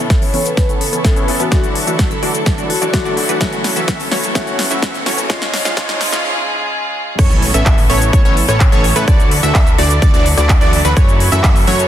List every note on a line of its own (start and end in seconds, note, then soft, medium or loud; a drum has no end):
0.00 1.01 A2 medium
0.00 1.50 C#3 medium
0.00 1.01 B3 medium
0.00 1.50 B3 medium
0.00 1.02 C#4 medium
0.00 1.02 E4 medium
0.00 5.26 E4 medium
0.00 1.02 A4 medium
0.00 5.26 A4 medium
0.00 riser medium
0.10 0.23 E3 medium
0.10 0.24 B3 medium
0.10 0.23 A4 medium
0.10 kick loud
0.10 snare soft
0.10 closed hi-hat soft
0.10 shaker medium
0.22 0.40 C#5 medium
0.22 open hi-hat medium
0.22 shaker soft
0.34 0.54 E3 medium
0.34 0.54 B3 medium
0.34 0.54 C#4 medium
0.34 0.54 A4 medium
0.34 0.54 C#5 medium
0.34 open hi-hat loud
0.45 0.53 B4 medium
0.45 closed hi-hat soft
0.45 shaker medium
0.57 0.66 E3 medium
0.57 0.66 B3 medium
0.57 0.66 C#4 medium
0.57 0.66 A4 medium
0.57 0.65 B4 medium
0.57 0.66 C#5 medium
0.57 kick loud
0.57 snare medium
0.57 closed hi-hat medium
0.57 shaker medium
0.69 0.83 E3 medium
0.69 0.83 B3 medium
0.69 0.83 C#4 medium
0.69 0.83 A4 medium
0.69 0.83 C#5 medium
0.69 closed hi-hat soft
0.69 shaker soft
0.81 0.88 A4 medium
0.81 open hi-hat loud
0.93 1.13 E3 medium
0.93 1.13 B3 medium
0.93 1.13 C#4 medium
0.93 1.13 A4 medium
0.93 1.00 A4 medium
0.93 1.13 C#5 medium
0.93 closed hi-hat medium
0.93 shaker medium
1.04 1.25 A2 medium
1.04 1.25 B3 medium
1.04 1.25 C#4 medium
1.04 1.25 E4 medium
1.04 1.26 A4 medium
1.04 kick loud
1.04 snare medium
1.04 closed hi-hat medium
1.04 shaker medium
1.16 1.37 E3 medium
1.16 1.37 B3 medium
1.16 1.37 C#4 medium
1.16 1.37 A4 medium
1.16 1.37 C#5 loud
1.16 closed hi-hat soft
1.16 shaker soft
1.28 1.49 B3 medium
1.28 1.49 C#4 medium
1.28 1.49 E4 medium
1.28 1.49 A4 medium
1.28 open hi-hat loud
1.40 1.49 E3 medium
1.40 1.49 B3 medium
1.40 1.49 C#4 medium
1.40 1.57 F#4 medium
1.40 1.49 A4 medium
1.40 1.49 B4 loud
1.40 closed hi-hat medium
1.40 shaker medium
1.51 2.90 D3 medium
1.51 3.39 D3 medium
1.51 1.84 E3 medium
1.51 5.26 F#3 medium
1.51 2.90 A3 medium
1.51 1.84 A3 medium
1.51 1.84 D4 medium
1.51 2.91 D4 medium
1.51 2.91 E4 medium
1.51 1.84 F#4 medium
1.51 2.91 F#4 medium
1.51 1.84 D5 medium
1.51 kick loud
1.51 snare medium
1.51 closed hi-hat soft
1.51 shaker soft
1.64 closed hi-hat soft
1.64 shaker soft
1.75 open hi-hat loud
1.87 1.97 E3 medium
1.87 1.97 A3 medium
1.87 1.97 D4 medium
1.87 1.97 F#4 medium
1.87 1.97 E5 medium
1.87 closed hi-hat medium
1.87 shaker medium
1.99 2.12 F#4 medium
1.99 2.12 E5 loud
1.99 kick loud
1.99 snare medium
1.99 closed hi-hat medium
1.99 shaker medium
2.11 2.18 A4 medium
2.11 closed hi-hat soft
2.11 shaker soft
2.23 2.43 E3 medium
2.23 2.43 A3 medium
2.23 2.43 D4 medium
2.23 2.43 F#4 medium
2.23 2.30 A4 medium
2.23 2.43 D5 loud
2.23 open hi-hat loud
2.34 2.52 A4 medium
2.34 closed hi-hat soft
2.34 shaker medium
2.46 2.55 E3 medium
2.46 2.55 A3 medium
2.46 2.55 D4 medium
2.46 2.55 F#4 medium
2.46 2.55 D5 loud
2.46 kick loud
2.46 snare medium
2.46 closed hi-hat medium
2.46 shaker medium
2.58 2.72 E3 medium
2.58 2.72 A3 medium
2.58 2.71 D4 medium
2.58 2.71 F#4 medium
2.58 2.72 D5 medium
2.58 closed hi-hat soft
2.58 shaker soft
2.70 3.36 F#4 medium
2.70 open hi-hat loud
2.82 3.03 E3 medium
2.82 3.02 A3 medium
2.82 3.02 D4 medium
2.82 3.02 F#4 medium
2.82 3.03 D5 medium
2.82 closed hi-hat medium
2.82 shaker medium
2.93 3.14 D3 medium
2.93 3.14 A3 medium
2.93 3.14 D4 medium
2.93 3.14 E4 medium
2.93 3.15 F#4 medium
2.93 kick loud
2.93 snare medium
2.93 closed hi-hat medium
2.93 shaker medium
3.05 3.26 E3 medium
3.05 3.26 A3 medium
3.05 3.26 D4 medium
3.05 3.26 F#4 medium
3.05 3.26 D5 loud
3.05 closed hi-hat soft
3.05 shaker soft
3.17 3.38 A3 medium
3.17 3.38 D4 medium
3.17 3.38 E4 medium
3.17 3.38 F#4 medium
3.17 open hi-hat loud
3.29 3.38 E3 medium
3.29 3.38 A3 medium
3.29 3.38 D4 medium
3.29 3.38 F#4 medium
3.29 3.38 B4 loud
3.29 closed hi-hat medium
3.29 shaker medium
3.39 7.15 C#3 medium
3.39 3.73 E3 medium
3.39 4.33 A3 medium
3.39 4.33 C#4 medium
3.39 4.34 E4 medium
3.39 4.34 F#4 medium
3.39 kick loud
3.39 snare medium
3.39 closed hi-hat soft
3.39 shaker medium
3.53 closed hi-hat soft
3.53 shaker soft
3.64 snare medium
3.64 open hi-hat loud
3.76 3.86 E3 medium
3.76 3.86 A3 medium
3.76 3.86 C#4 medium
3.76 3.86 F#4 medium
3.76 3.86 E5 medium
3.76 closed hi-hat soft
3.76 shaker medium
3.88 4.01 E3 medium
3.88 4.01 A3 medium
3.88 4.01 C#4 medium
3.88 4.01 F#4 medium
3.88 4.01 E5 medium
3.88 kick loud
3.88 snare medium
3.88 closed hi-hat medium
3.88 shaker medium
4.00 open hi-hat medium
4.00 shaker soft
4.12 4.32 E3 medium
4.12 4.32 A3 medium
4.12 4.32 C#4 medium
4.12 4.32 F#4 medium
4.12 4.32 C#5 medium
4.12 snare medium
4.12 open hi-hat loud
4.24 closed hi-hat medium
4.24 shaker medium
4.34 4.68 E3 medium
4.34 5.27 A3 medium
4.34 4.68 A3 medium
4.34 5.28 C#4 medium
4.34 4.68 C#4 medium
4.34 5.28 E4 medium
4.34 4.68 F#4 medium
4.34 5.28 F#4 medium
4.34 4.68 C#5 medium
4.34 kick loud
4.34 snare medium
4.34 closed hi-hat medium
4.34 shaker medium
4.47 closed hi-hat soft
4.47 shaker soft
4.59 snare medium
4.59 open hi-hat loud
4.71 4.81 E3 medium
4.71 4.81 A3 medium
4.71 4.81 C#4 medium
4.71 4.81 F#4 medium
4.71 4.81 E5 medium
4.71 closed hi-hat medium
4.71 shaker medium
4.83 kick loud
4.83 snare medium
4.83 closed hi-hat medium
4.83 shaker medium
4.94 closed hi-hat soft
4.94 shaker soft
5.06 5.27 E3 medium
5.06 5.27 A3 medium
5.06 5.27 C#4 medium
5.06 5.27 F#4 medium
5.06 5.27 C#5 medium
5.06 snare medium
5.06 open hi-hat loud
5.18 closed hi-hat soft
5.18 shaker medium
5.28 5.62 F3 medium
5.28 5.74 G#3 medium
5.28 5.62 G#3 medium
5.28 7.17 G#3 medium
5.28 5.75 C#4 medium
5.28 5.62 C#4 medium
5.28 5.62 F4 medium
5.28 7.17 F4 medium
5.28 5.75 F4 medium
5.28 7.17 G#4 medium
5.28 5.62 C#5 medium
5.28 kick loud
5.28 snare medium
5.28 closed hi-hat soft
5.28 shaker medium
5.42 snare medium
5.42 closed hi-hat soft
5.42 shaker soft
5.54 snare medium
5.54 open hi-hat loud
5.65 5.75 F3 medium
5.65 5.75 G#3 medium
5.65 5.75 C#4 medium
5.65 5.75 F4 medium
5.65 5.75 F5 medium
5.65 snare medium
5.65 closed hi-hat medium
5.65 shaker medium
5.76 6.10 F3 medium
5.76 6.22 G#3 medium
5.76 6.10 G#3 medium
5.76 6.22 C#4 medium
5.76 6.10 C#4 medium
5.76 6.10 F4 medium
5.76 6.22 F4 medium
5.76 6.10 C#5 medium
5.76 kick loud
5.76 snare medium
5.76 closed hi-hat soft
5.76 shaker medium
5.89 snare medium
5.89 closed hi-hat soft
5.89 shaker soft
6.01 snare loud
6.01 open hi-hat loud
6.12 6.22 F3 medium
6.12 6.22 G#3 medium
6.12 6.22 C#4 medium
6.12 6.22 F4 medium
6.12 6.22 F5 medium
6.12 snare medium
6.12 closed hi-hat medium
6.12 shaker medium
7.19 7.52 A1 loud
7.19 9.06 C#3 medium
7.19 7.51 E3 medium
7.19 7.51 B3 medium
7.19 9.06 B3 medium
7.19 7.51 C#4 medium
7.19 9.06 E4 medium
7.19 10.93 A4 medium
7.19 7.51 A4 medium
7.19 7.51 C#5 medium
7.19 kick loud
7.19 cross-stick medium
7.19 closed hi-hat medium
7.19 crash loud
7.19 impact medium
7.19 shaker medium
7.31 closed hi-hat soft
7.31 shaker soft
7.42 open hi-hat loud
7.54 7.64 A1 loud
7.54 7.64 E3 medium
7.54 7.64 B3 medium
7.54 7.64 C#4 medium
7.54 7.64 A4 medium
7.54 7.64 E5 medium
7.54 7.64 E5 loud
7.54 closed hi-hat medium
7.54 shaker medium
7.66 7.87 A1 medium
7.66 7.79 E3 medium
7.66 7.79 B3 medium
7.66 7.79 C#4 medium
7.66 7.79 A4 medium
7.66 7.79 E5 loud
7.66 kick loud
7.66 clap loud
7.66 closed hi-hat medium
7.66 shaker medium
7.78 open hi-hat medium
7.78 shaker soft
7.89 8.11 A1 loud
7.89 8.10 E3 medium
7.89 8.10 B3 medium
7.89 8.10 C#4 medium
7.89 8.10 A4 medium
7.89 8.10 C#5 loud
7.89 open hi-hat loud
8.02 closed hi-hat medium
8.02 shaker medium
8.13 8.23 A1 loud
8.13 8.22 E3 medium
8.13 8.22 C#4 medium
8.13 8.22 A4 medium
8.13 8.22 C#5 loud
8.13 kick loud
8.13 closed hi-hat medium
8.13 shaker medium
8.25 8.46 A1 loud
8.25 8.38 E3 medium
8.25 8.38 B3 medium
8.25 8.38 C#4 medium
8.25 8.38 A4 medium
8.25 8.38 C#5 medium
8.25 closed hi-hat soft
8.25 shaker soft
8.37 open hi-hat loud
8.49 8.70 A1 medium
8.49 8.69 E3 medium
8.49 8.69 B3 medium
8.49 8.69 C#4 medium
8.49 8.69 A4 medium
8.49 8.69 C#5 medium
8.49 cross-stick medium
8.49 closed hi-hat medium
8.49 shaker medium
8.60 kick loud
8.60 clap loud
8.60 closed hi-hat medium
8.60 shaker medium
8.72 8.94 A1 loud
8.72 8.93 E3 loud
8.72 8.93 B3 medium
8.72 8.93 C#4 medium
8.72 8.93 A4 medium
8.72 8.93 C#5 loud
8.72 closed hi-hat soft
8.72 shaker soft
8.84 open hi-hat loud
8.96 9.05 A2 loud
8.96 9.05 E3 medium
8.96 9.05 B3 medium
8.96 9.05 C#4 medium
8.96 9.05 A4 medium
8.96 9.05 B4 loud
8.96 closed hi-hat medium
8.96 shaker medium
9.08 9.41 D2 loud
9.08 10.95 D3 medium
9.08 9.40 E3 medium
9.08 11.88 F#3 medium
9.08 9.40 A3 medium
9.08 9.40 D4 medium
9.08 11.88 E4 medium
9.08 9.40 F#4 medium
9.08 9.40 D5 medium
9.08 kick loud
9.08 cross-stick medium
9.08 closed hi-hat soft
9.08 shaker medium
9.20 closed hi-hat soft
9.20 shaker soft
9.31 open hi-hat loud
9.43 9.53 D2 medium
9.43 9.53 E3 medium
9.43 9.53 A3 medium
9.43 9.53 D4 medium
9.43 9.53 F#4 medium
9.43 9.53 E5 medium
9.43 closed hi-hat medium
9.43 shaker medium
9.55 9.76 D2 medium
9.55 9.68 E5 loud
9.55 kick loud
9.55 clap loud
9.55 closed hi-hat medium
9.55 shaker medium
9.67 closed hi-hat soft
9.67 shaker soft
9.78 10.00 D2 loud
9.78 9.99 E3 medium
9.78 9.99 A3 medium
9.78 9.99 D4 medium
9.78 9.99 F#4 medium
9.78 9.99 D5 loud
9.78 open hi-hat loud
9.90 closed hi-hat medium
9.90 shaker medium
10.02 10.12 D2 loud
10.02 10.11 E3 medium
10.02 10.11 A3 medium
10.02 10.11 D4 medium
10.02 10.11 F#4 medium
10.02 10.11 D5 loud
10.02 10.11 D5 medium
10.02 kick loud
10.02 closed hi-hat medium
10.02 shaker medium
10.14 10.35 D2 medium
10.14 10.27 E3 medium
10.14 10.27 A3 medium
10.14 10.27 D4 medium
10.14 10.27 F#4 medium
10.14 10.27 D5 loud
10.14 10.27 D5 medium
10.14 closed hi-hat soft
10.14 shaker soft
10.26 open hi-hat loud
10.37 10.59 D2 loud
10.37 10.58 E3 medium
10.37 10.58 A3 medium
10.37 10.58 D4 medium
10.37 10.58 F#4 medium
10.37 10.58 D5 medium
10.37 cross-stick medium
10.37 closed hi-hat medium
10.37 shaker medium
10.49 kick loud
10.49 clap loud
10.49 closed hi-hat medium
10.49 shaker medium
10.61 10.82 D2 medium
10.61 10.82 E3 medium
10.61 10.82 A3 medium
10.61 10.82 D4 medium
10.61 10.82 F#4 medium
10.61 10.82 D5 loud
10.61 closed hi-hat soft
10.61 shaker soft
10.73 open hi-hat loud
10.85 10.94 D2 loud
10.85 10.94 E3 medium
10.85 10.94 A3 medium
10.85 10.94 D4 medium
10.85 10.94 F#4 medium
10.85 10.94 B4 medium
10.85 10.94 B4 loud
10.85 closed hi-hat medium
10.85 shaker medium
10.96 11.30 F#2 loud
10.96 11.88 C#3 medium
10.96 11.29 E3 medium
10.96 11.29 A3 medium
10.96 11.29 C#4 medium
10.96 11.29 F#4 medium
10.96 11.88 A4 medium
10.96 11.29 C#5 medium
10.96 kick loud
10.96 cross-stick medium
10.96 closed hi-hat soft
10.96 shaker medium
11.09 closed hi-hat soft
11.09 shaker soft
11.20 open hi-hat loud
11.32 11.42 F#2 loud
11.32 11.42 E3 medium
11.32 11.42 A3 medium
11.32 11.42 C#4 medium
11.32 11.42 F#4 medium
11.32 11.42 E5 medium
11.32 11.42 E5 loud
11.32 closed hi-hat medium
11.32 shaker medium
11.44 11.65 F#2 medium
11.44 11.57 E3 loud
11.44 11.57 E5 loud
11.44 kick loud
11.44 clap loud
11.44 closed hi-hat medium
11.44 shaker medium
11.56 open hi-hat medium
11.56 shaker soft
11.67 11.88 F#2 loud
11.67 11.88 E3 medium
11.67 11.88 A3 medium
11.67 11.88 C#4 medium
11.67 11.88 F#4 medium
11.67 11.88 C#5 loud
11.67 open hi-hat loud
11.79 closed hi-hat medium
11.79 shaker medium